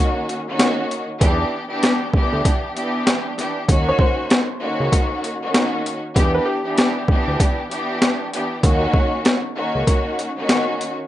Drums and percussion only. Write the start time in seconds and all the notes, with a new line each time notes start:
0.29 closed hi-hat
0.59 snare, closed hi-hat
0.91 closed hi-hat
1.21 kick, closed hi-hat
1.83 snare, closed hi-hat
2.14 kick
2.45 kick, closed hi-hat
2.77 closed hi-hat
3.07 snare, closed hi-hat
3.38 snare, closed hi-hat
3.69 kick, closed hi-hat
3.99 kick
4.30 snare, closed hi-hat
4.92 kick, closed hi-hat
5.24 closed hi-hat
5.54 snare, closed hi-hat
5.86 closed hi-hat
6.16 kick, closed hi-hat
6.78 snare, closed hi-hat
7.08 kick
7.40 kick, closed hi-hat
7.71 closed hi-hat
8.02 snare, closed hi-hat
8.34 closed hi-hat
8.63 kick, closed hi-hat
8.94 kick
9.25 snare, closed hi-hat
9.87 kick, closed hi-hat
10.19 closed hi-hat
10.49 snare, closed hi-hat
10.81 closed hi-hat